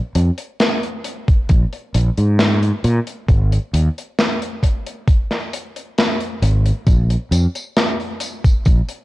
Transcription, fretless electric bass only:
0.15 F2
1.49 A#1
1.95 A#1
2.18 G#2
2.84 A#2
3.29 G#1
3.73 D#2
6.42 G#1
6.86 A#1
7.31 F2
8.66 A#1

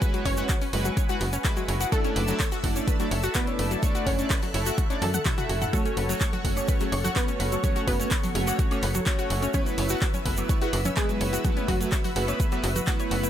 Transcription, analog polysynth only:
0.02 G#3 E4 F#4 B4
0.38 G#3 E4 F#4 B4
0.73 G#3 E4 F#4 B4
1.09 G#3 E4 F#4 B4
1.45 G#3 E4 F#4 B4
1.92 A3 D4 E4 D5
2.28 A3 D4 E4 D5
2.64 A3 D4 E4 D5
3.00 A3 D4 E4 D5
3.35 A3 D4 E4 D5
3.83 A3 D4 E4 D5
4.19 A3 D4 E4 D5
4.54 A3 E4 E5
4.90 A3 D4 E4 D5
5.26 A3 E4 E5
5.73 A3 C#4 F#4 C#5
6.09 A3 C#4 F#4 C#5
6.45 A3 C#4 F#4 C#5
6.81 A3 C#4 F#4 C#5
7.16 A3 C#4 F#4 C#5
7.64 A3 C#4 F#4 C#5
8.00 A3 C#4 F#4 C#5
8.35 A3 C#4 F#4 C#5
8.71 A3 C#4 F#4 C#5
9.07 A3 C#4 F#4 C#5
9.54 A3 E4 B4
9.90 A3 B3 E4 B4
10.26 A3 B3 E4 B4
10.62 A3 B3 E4 B4
10.97 E3 B3 E4 B4
11.45 A3 B3 E4 B4
11.81 A3 B3 E4 B4
12.16 A3 B3 E4 B4
12.52 A3 B3 E4 B4
12.88 A3 B3 E4 B4

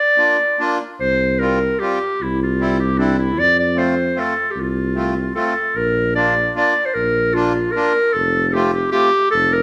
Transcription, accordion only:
0.17 A#3 D4 F4
0.59 A#3 D4 F4
1.40 G3 C4 F4
1.80 G3 C4 F4
2.59 G3 C4 E4
2.98 G3 C4 E4
3.75 A3 C4 F4
4.16 A3 C4 F4
4.95 A3 C4 F4
5.35 A3 C4 F4
6.16 A#3 D4 F4
6.55 A#3 D4 F4
7.34 A#3 D4 F4
7.75 A#3 D4 F4
8.53 A3 C4 F4
8.91 A3 C4 F4

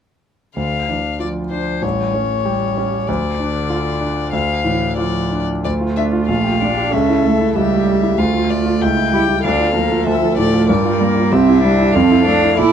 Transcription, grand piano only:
0.56 D2
0.88 D4
1.20 F4
1.51 D4
1.82 A1
2.14 C#4
2.46 G4
2.78 C#4
3.08 D2
3.39 D4
3.70 F4
4.01 D4
4.33 D2
4.64 A2
4.98 F4
5.32 D4
5.65 D2
5.81 F4
5.97 D4
6.13 F4
6.28 A#1
6.44 G4
6.62 D4
6.77 G4
6.93 C#2
7.09 E4
7.25 A3
7.40 E4
7.56 C#2
7.72 A3
7.87 C#3
8.02 E4
8.18 D2
8.34 F4
8.51 A3
8.66 F4
8.82 C#2
8.97 E4
9.13 G3
9.29 E4
9.44 D2
9.60 F4
9.75 F3
9.92 F4
10.06 D2
10.22 F3
10.38 A2
10.54 F4
10.69 G2
10.85 F4
11.00 G3
11.16 F4
11.32 C2
11.48 E4
11.65 G3
11.80 E4
11.95 F2
12.11 E4
12.27 A3
12.43 E4
12.59 A#2

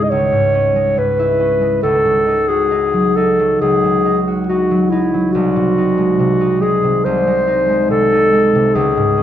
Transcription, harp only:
Already playing: C#2 G#2 G#3 C#4 E4 G#4 C#5
0.12 C#2
0.32 G#2
0.54 C#4
0.76 G#3
0.97 G#2
1.19 E4
1.40 C#4
1.61 G#3
1.83 C#2
2.05 C#3
2.27 D#4
2.49 F#4
2.71 D#4
2.93 F#3
3.17 D#4
3.40 F#3
3.62 C#2
3.84 C#3
4.06 D#4
4.28 F#4
4.49 D#4
4.71 F#3
4.92 D#4
5.14 F#3
5.35 C2
5.56 C3
5.78 D#4
5.98 G#3
6.19 C3
6.41 D#4
6.62 G#3
6.84 C3
7.06 C2
7.27 G#3
7.47 D#4
7.69 G#3
7.91 C3
8.12 D#4
8.33 G#3
8.55 C3
8.75 C#2
8.97 G#2
9.17 C#4

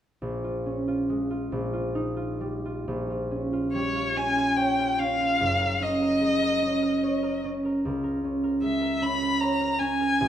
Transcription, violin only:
3.73 C#5
4.17 G#5
4.57 G5
4.99 F5
5.82 D#5
8.63 E5
9.02 B5
9.40 A#5
9.79 G#5

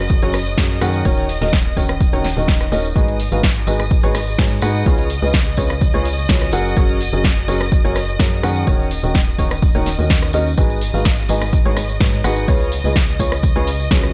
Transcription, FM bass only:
Already playing: F#1
0.22 F#1
0.58 F#2
0.81 F#2
1.05 D#1
1.41 D#1
1.77 D#1
2.13 D#1
2.37 D#1
2.72 D#1
2.96 G#1
3.32 G#1
3.67 G#1
4.03 G#1
4.39 G#2
4.62 G#2
4.86 C#2
5.22 C#2
5.58 C#2
5.94 C#2
6.29 C#2
6.53 F#1
6.77 F#1
7.13 F#1
7.48 F#1
7.84 F#1
8.19 F#2
8.43 F#2
8.67 D#1
9.03 D#1
9.39 D#1
9.75 D#1
9.99 D#2
10.34 D#2
10.58 G#1
10.94 G#1
11.29 G#1
11.65 G#1
12.00 G#2
12.24 G#1
12.48 C#2
12.84 C#2
13.19 C#2
13.56 C#2
13.91 C#2

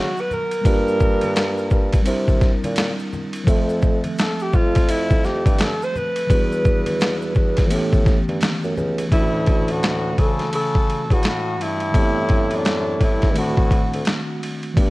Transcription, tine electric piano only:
Already playing: F#3 B3 F#4 D5
0.61 G3 A#3 D4
0.66 F4 G4
0.75 A#4
2.03 G3 C4 D4
2.08 E4 A#4
3.44 F3 A3 C4
3.50 A4 E5
6.27 E3 F#3 B3
6.32 G3 D4 F#4
7.67 E3 A3 B3
7.73 C#4 G4
9.09 E3 A3 C#4
9.14 E4
9.23 F#4
11.91 E3 A3 B3
11.96 C4 G4
13.32 D#3 A3 C4
13.37 D4 F#4
14.74 E3 A3 B3
14.79 D4 G4

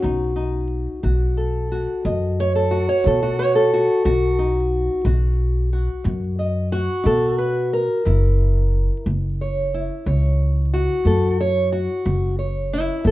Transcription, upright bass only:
0.04 B1
1.03 B1
2.05 F#2
3.06 B2
4.05 B1
5.05 B1
6.05 F#2
7.05 B2
8.06 F#1
9.06 F#1
10.06 C#2
11.05 F#2
12.06 F#1
13.05 F#1

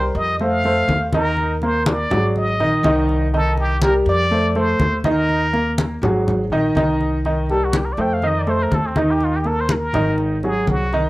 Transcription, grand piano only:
Already playing: G3 G4 A#4
0.40 A3 A4 C5
0.65 A3 A4 C5
1.14 D#3 D#4 D#5
1.63 A#3 A#4
2.12 F#3 F#4 G#4
2.60 D#3 D#4 D#5
2.84 D#3 D#4 D#5
3.34 D#3 D#4 D#5
3.82 G3 G4 A#4
4.31 A3 A4 C5
4.56 A3 A4 C5
5.05 D#3 D#4 D#5
5.53 A#3 A#4
6.03 F#3 F#4 G#4
6.52 D#3 D#4 D#5
6.76 D#3 D#4 D#5
7.26 D#3 D#4 D#5
7.50 G3 G4 A#4
7.98 A3 A4 C5
8.23 D#3 D#4 D#5
8.47 A3 A4 C5
8.96 D#3 D#4 D#5
9.45 A#3 A#4
9.95 D#3 D#4 D#5
10.44 F#3 F#4 G#4
10.93 D#3 D#4 D#5

